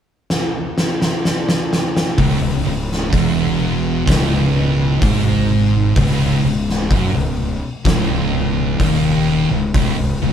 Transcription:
0.30 snare medium
0.78 snare medium
1.02 snare medium
1.25 snare medium
1.49 snare loud
1.73 snare loud
1.97 snare loud
2.18 2.40 C#1 medium
2.18 2.40 C#2 loud
2.18 kick loud
2.18 open hi-hat medium
2.41 2.63 C#1 medium
2.41 2.65 C#2 medium
2.65 3.09 C#1 medium
2.65 3.03 C#2 medium
2.92 snare soft
3.13 4.03 E1 loud
3.13 4.07 E2 loud
3.13 kick loud
3.13 open hi-hat medium
4.08 4.98 C#1 loud
4.08 5.01 C#2 loud
4.08 kick loud
4.08 snare loud
4.08 open hi-hat medium
5.02 5.93 G#1 loud
5.02 5.96 G#2 loud
5.02 kick loud
5.02 open hi-hat medium
5.96 6.40 C#1 loud
5.96 6.42 C#2 medium
5.96 kick loud
5.96 open hi-hat medium
6.43 6.88 C#1 medium
6.43 6.82 C#2 medium
6.70 snare soft
6.90 7.13 F#1 loud
6.90 7.13 F#2 loud
6.90 kick loud
6.90 open hi-hat medium
7.14 7.58 C#1 medium
7.14 7.53 C#2 medium
7.85 8.76 C#1 loud
7.85 8.79 C#2 loud
7.85 kick loud
7.85 snare loud
7.85 open hi-hat medium
8.80 9.47 D#1 loud
8.80 9.49 D#2 loud
8.80 kick medium
8.80 open hi-hat medium
9.50 9.73 C#1 medium
9.50 9.73 C#2 medium
9.74 9.97 C#1 loud
9.74 9.97 C#2 loud
9.74 kick loud
9.74 open hi-hat medium
9.97 10.20 C#1 medium
9.97 10.20 C#2 medium
10.22 10.33 C#1 medium
10.22 10.33 C#2 medium

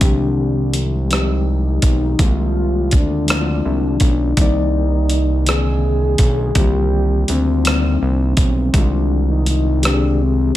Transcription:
0.00 1.79 C2 medium
0.00 0.94 D#3 medium
0.00 0.91 F3 medium
0.00 0.92 G#3 medium
0.00 0.93 C4 medium
0.00 0.75 D4 medium
0.00 kick medium
0.00 closed hi-hat medium
0.05 0.94 G4 medium
0.73 closed hi-hat medium
1.08 2.00 F3 medium
1.08 2.01 G#3 soft
1.08 2.02 C4 medium
1.08 closed hi-hat medium
1.12 2.02 D#4 soft
1.12 2.23 D#4 medium
1.12 2.03 G4 medium
1.12 cross-stick medium
1.82 2.16 B1 medium
1.82 kick medium
1.82 closed hi-hat medium
2.17 2.95 C2 medium
2.17 3.09 D#3 medium
2.17 3.10 G#3 medium
2.17 3.11 A#3 medium
2.17 2.96 F4 loud
2.17 kick medium
2.17 closed hi-hat medium
2.21 3.12 C4 medium
2.21 3.12 F4 medium
2.91 3.61 D2 medium
2.91 4.39 D4 medium
2.91 kick medium
2.91 closed hi-hat medium
3.27 4.19 F3 medium
3.27 4.19 G#3 medium
3.27 4.20 A#3 soft
3.27 cross-stick medium
3.27 closed hi-hat medium
3.31 4.21 C4 soft
3.31 3.37 E4 medium
3.39 4.25 F4 medium
3.65 3.98 C2 medium
4.00 4.34 B1 medium
4.00 kick medium
4.00 closed hi-hat medium
4.35 6.15 C2 medium
4.35 4.43 D3 medium
4.35 5.28 G3 medium
4.35 5.29 A#3 medium
4.35 kick medium
4.35 closed hi-hat medium
4.40 5.31 D#3 medium
4.40 5.30 C4 medium
4.40 5.50 D#4 loud
4.40 5.31 D5 medium
5.09 closed hi-hat medium
5.45 6.38 D3 soft
5.45 6.37 D#3 medium
5.45 6.39 A#3 soft
5.45 6.60 G#4 medium
5.45 cross-stick medium
5.45 closed hi-hat medium
5.50 6.39 C4 medium
5.50 6.40 D4 medium
6.18 6.52 B1 medium
6.18 kick medium
6.18 closed hi-hat medium
6.54 7.25 C2 medium
6.54 6.61 D3 medium
6.54 7.47 G3 medium
6.54 7.47 A#3 medium
6.54 kick loud
6.54 closed hi-hat medium
6.58 7.49 D#3 medium
6.58 7.48 C4 medium
6.58 7.49 F4 medium
6.58 7.30 G4 loud
7.28 7.98 D2 medium
7.28 8.78 C4 loud
7.28 closed hi-hat medium
7.63 8.56 G3 soft
7.63 8.57 A#3 medium
7.63 8.55 D#4 medium
7.63 closed hi-hat medium
7.67 8.57 C4 soft
7.67 8.58 D4 medium
7.67 cross-stick medium
8.02 8.34 C2 medium
8.37 8.70 B1 medium
8.37 kick medium
8.37 closed hi-hat medium
8.73 10.52 C2 medium
8.73 9.64 D#3 medium
8.73 9.65 G3 medium
8.73 9.66 G#3 medium
8.73 9.30 D4 medium
8.73 kick medium
8.73 closed hi-hat medium
8.77 9.67 C4 medium
8.77 9.67 F4 medium
9.31 9.47 D#4 medium
9.46 9.82 D#4 medium
9.46 closed hi-hat medium
9.81 10.57 D#3 medium
9.81 10.57 G#3 medium
9.81 9.85 G4 medium
9.81 closed hi-hat medium
9.85 10.57 C4 medium
9.85 10.24 D4 medium
9.85 9.91 G4 medium
9.85 cross-stick medium
9.93 10.57 G#4 medium
10.22 10.57 C4 medium

